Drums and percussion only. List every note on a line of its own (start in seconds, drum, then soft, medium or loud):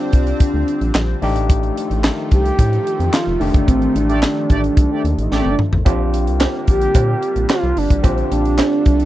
0.00 closed hi-hat soft
0.12 kick loud
0.12 closed hi-hat medium
0.27 closed hi-hat medium
0.40 kick loud
0.40 closed hi-hat loud
0.68 closed hi-hat medium
0.81 closed hi-hat soft
0.95 snare loud
0.95 clap loud
1.22 open hi-hat medium
1.36 closed hi-hat medium
1.49 kick loud
1.49 closed hi-hat medium
1.63 closed hi-hat soft
1.77 closed hi-hat medium
1.91 closed hi-hat soft
2.04 snare loud
2.04 clap medium
2.31 kick loud
2.31 closed hi-hat medium
2.45 closed hi-hat medium
2.59 kick loud
2.59 closed hi-hat loud
2.73 closed hi-hat soft
2.87 closed hi-hat medium
3.00 closed hi-hat soft
3.14 snare loud
3.14 clap loud
3.41 open hi-hat medium
3.54 kick loud
3.54 closed hi-hat medium
3.68 kick loud
3.68 closed hi-hat medium
3.82 closed hi-hat soft
3.96 closed hi-hat medium
4.09 closed hi-hat medium
4.23 snare loud
4.23 clap medium
4.50 kick loud
4.50 closed hi-hat medium
4.64 closed hi-hat soft
4.77 kick loud
4.77 closed hi-hat loud
5.05 closed hi-hat medium
5.18 closed hi-hat medium
5.32 snare medium
5.59 mid tom loud
5.73 floor tom loud
5.86 kick loud
5.86 closed hi-hat medium
5.86 cowbell medium
6.14 closed hi-hat medium
6.27 closed hi-hat soft
6.41 snare loud
6.41 clap medium
6.41 cowbell medium
6.67 kick loud
6.67 closed hi-hat medium
6.81 closed hi-hat medium
6.94 kick loud
6.94 closed hi-hat loud
6.94 cowbell medium
7.22 closed hi-hat medium
7.36 closed hi-hat medium
7.50 snare loud
7.50 clap loud
7.50 cowbell medium
7.77 open hi-hat medium
7.90 kick loud
7.90 closed hi-hat medium
8.04 kick loud
8.04 closed hi-hat medium
8.04 cowbell medium
8.18 closed hi-hat soft
8.32 closed hi-hat medium
8.45 closed hi-hat soft
8.59 snare loud
8.59 clap medium
8.59 cowbell medium
8.86 kick loud
8.86 closed hi-hat medium
9.00 closed hi-hat medium